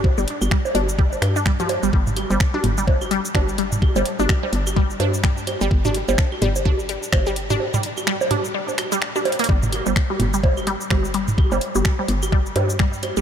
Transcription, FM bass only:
X:1
M:4/4
L:1/16
Q:"Swing 16ths" 1/4=127
K:Dm
V:1 name="FM bass" clef=bass
G,,, G,,, z G,,, z2 G,,,4 G,,4- G,, G,,, | G,,,3 G,,, z2 G,,,4- G,,, z G,,,4- | G,,, G,,, z G,,, z2 G,,,4 G,,4- G,, G,,, | G,,,3 G,,, z2 G,,,4- G,,, z G,,,4 |
z16 | G,,,3 G,,, z2 G,,,4- G,,, z G,,,4- | G,,, G,,, z G,,, z2 G,,,4 G,,4- G,, G,,, |]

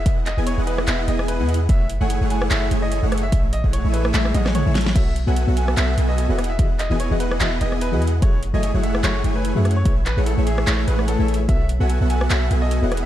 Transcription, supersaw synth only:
X:1
M:4/4
L:1/16
Q:"Swing 16ths" 1/4=147
K:E
V:1 name="Supersaw synth"
[B,EGdf] z2 [B,EGdg]2 [B,EGdf]3 [B,EGdf]2 [B,EGdg]3 [B,EGdf]2 z | [A,EGcf] z2 [A,EGcg]2 [A,EGcf]3 [A,EGcf]2 [A,EGcg]3 [A,EGcf]2 z | [A,EGce] z2 [A,EGcf]2 [A,EGce]3 [A,EGce]2 [A,EGcf]3 [A,EGce]2 z | [B,FAef] z2 [B,FAeg]2 [B,FAef]3 [B,FAef]2 [B,FAeg]3 [B,EGdf]2 z |
[B,EGdf] z2 [B,EGdg]2 [B,EGdf]3 [B,EGdf]2 [B,EGdg]3 [B,EGdf]2 z | [A,EGcf] z2 [A,EGcg]2 [A,EGcf]3 [A,Ecf]2 [A,EGcg]3 [A,EGcf]2 z | [A,EGce] z2 [A,EGcf]2 [A,EGce]3 [A,EGce]2 [A,EGcf]3 [A,EGce]2 z | [B,FAef] z2 [B,FAeg]2 [B,FAef]3 [B,FAef]2 [B,FAeg]3 [B,EGdf]2 z |]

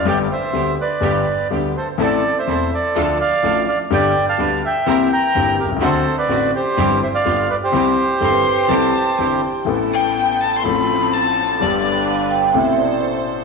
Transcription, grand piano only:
X:1
M:4/4
L:1/16
Q:1/4=125
K:C
V:1 name="Grand piano" clef=bass
[G,,,G,,D,G,B,G]2 z2 [D,,D,G,B,G]2 z2 [G,,,G,,D,G,B,G]2 z2 [D,,D,G,B,G]2 z2 | [A,,,A,,E,A,CA]2 z2 [E,,,E,,E,A,CA]2 z2 [D,,D,F,A,DA]2 z2 [A,,,A,,F,A,DA]2 z2 | [G,,,G,,D,G,B,G]2 z2 [D,,D,G,B,G]2 z2 [C,,C,E,_B,CG]2 z2 [G,,,G,,E,B,CG]2 z/2 =B,,,/2 C,,/2 _D,,/2 | [D,,D,A,C^F]2 z2 [A,,,A,,D,A,CF]2 z2 [G,,,G,,E,G,CG]2 z2 [G,,,G,,D,G,B,=F]2 z2 |
[C,,C,E,G,CG]2 z2 [G,,,G,,E,G,CG]2 z2 [C,,C,E,G,CG]2 z2 [G,,,G,,E,G,CG]2 z2 | [K:Am] [A,,,A,,E,A,B,A]8 [A,,,A,,F,A,CA]8 | [G,,,G,,D,G,B,G]8 [A,,,A,,B,,C,A,E]8 |]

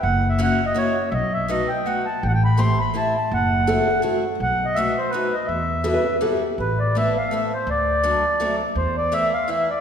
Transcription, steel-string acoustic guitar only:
X:1
M:3/4
L:1/8
Q:"Swing" 1/4=165
K:Em
V:1 name="Steel-string acoustic guitar"
z2 [^A,^CEF] z [A,CEF] z | z2 [A,B,^DF] z [A,B,DF] z | z2 [A,CEG] z [A,CEG] z | z2 [A,CEF] z [A,CEF] z |
z2 [A,B,^DF] z [A,B,DF] z | z2 [G,B,EF] z [G,B,EF] z | [K:Am] z2 [A,B,CE] z [A,B,CE] z | z2 [^F,A,CD] z [F,A,CD] z |
z2 [E,A,CE] z [E,A,CE] z |]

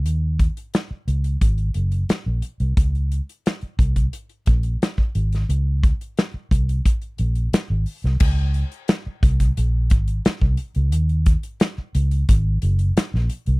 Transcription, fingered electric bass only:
X:1
M:4/4
L:1/16
Q:1/4=88
K:Abmix
V:1 name="Fingered electric bass" clef=bass
E,,3 z3 D,,2 A,,,2 G,,,2 z B,,, z C,, | D,,3 z3 C,,2 z2 B,,,2 z2 A,,,2 | D,,3 z3 C,,2 z2 B,,,2 z A,,, z C,, | D,,3 z3 C,,2 B,,,2 A,,,2 z C,, z D,, |
E,,3 z3 D,,2 A,,,2 G,,,2 z B,,, z C,, |]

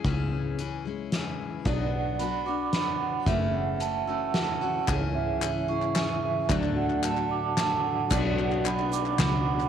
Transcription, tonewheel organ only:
X:1
M:3/4
L:1/8
Q:1/4=112
K:Bdor
V:1 name="Tonewheel organ" clef=bass
z6 | z6 | z6 | [G,,C,E,CE]6 |
[A,,D,F,DF]6 | [B,,F,DF]6 |]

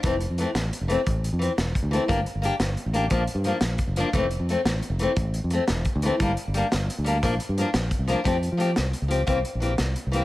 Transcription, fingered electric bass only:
X:1
M:12/8
L:1/16
Q:3/8=117
K:F
V:1 name="Fingered electric bass" clef=bass
F,,,3 F,,2 z A,,,2 z F,,,2 z A,,,3 F,,2 z E,,,2 z D,,2 z | G,,,2 z G,,,2 z G,,,2 z A,,,3 B,,,2 z G,,2 z B,,,2 z _G,,,2 z | F,,,3 F,,2 z A,,,2 z F,,,2 z A,,,3 F,,2 z E,,,2 z D,,2 z | G,,,2 z G,,,2 z G,,,2 z D,,3 B,,,2 z G,,2 z B,,,2 z C,,2 z |
F,,3 F,3 C,,2 z _D,,3 C,,2 z B,,,3 C,,2 z C,,2 z |]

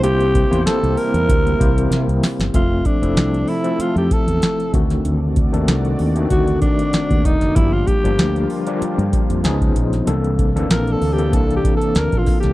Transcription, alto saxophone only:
X:1
M:4/4
L:1/16
Q:"Swing 16ths" 1/4=96
K:F
V:1 name="Alto saxophone"
G4 A2 B8 z2 | F2 D4 E2 F G A4 z2 | z8 ^F2 D4 _E2 | E F G4 z8 z2 |
z4 (3B2 A2 G2 (3A2 G2 A2 (3B2 F2 G2 |]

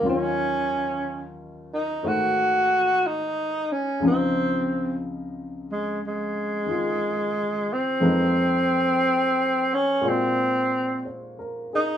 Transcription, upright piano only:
X:1
M:4/4
L:1/8
Q:"Swing" 1/4=60
K:Db
V:1 name="Upright piano"
z8 | z8 | z6 (3c B A |]
V:2 name="Upright piano" clef=bass
[E,,E,G,DF]4 [A,,E,=A,Gc]4 | [D,,D,F,CE]4- [D,,D,F,CE] [E,A,F]3 | [F,,F,A,E_c]4 [B,,A,FG=d]4 |]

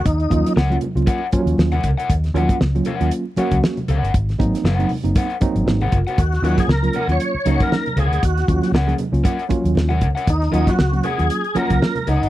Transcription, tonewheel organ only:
X:1
M:4/4
L:1/16
Q:"Swing 16ths" 1/4=117
K:Ebdor
V:1 name="Tonewheel organ"
E4 z12 | z16 | z16 | G3 A B3 d4 B3 A A |
G4 z12 | E3 G3 A4 B4 E2 |]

